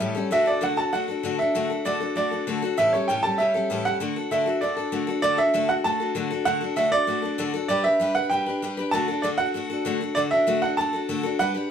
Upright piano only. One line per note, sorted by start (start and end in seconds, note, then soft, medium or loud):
0.00 0.13 E5 medium
0.32 0.48 E5 loud
0.47 0.63 D5 medium
0.63 0.79 F#5 medium
0.77 0.93 A5 loud
0.93 1.40 F#5 medium
1.39 1.87 E5 medium
1.85 2.15 D5 medium
2.17 2.59 D5 medium
2.78 2.92 E5 loud
2.93 3.09 C#5 medium
3.08 3.24 G5 medium
3.23 3.39 A5 loud
3.38 3.86 E5 medium
3.85 4.33 F#5 loud
4.32 4.63 E5 medium
4.61 5.05 D5 medium
5.22 5.39 D5 loud
5.38 5.70 E5 loud
5.69 5.74 F#5 loud
5.84 6.48 A5 loud
6.45 6.78 F#5 loud
6.77 6.93 E5 medium
6.92 7.50 D5 loud
7.68 7.83 D5 loud
7.84 8.13 E5 medium
8.15 8.30 F#5 loud
8.30 8.94 G5 loud
8.91 9.24 A5 loud
9.22 9.27 D5 medium
9.38 9.96 F#5 loud
10.15 10.20 D5 loud
10.31 10.60 E5 loud
10.62 10.78 F#5 medium
10.77 11.41 A5 loud
11.39 11.71 F#5 loud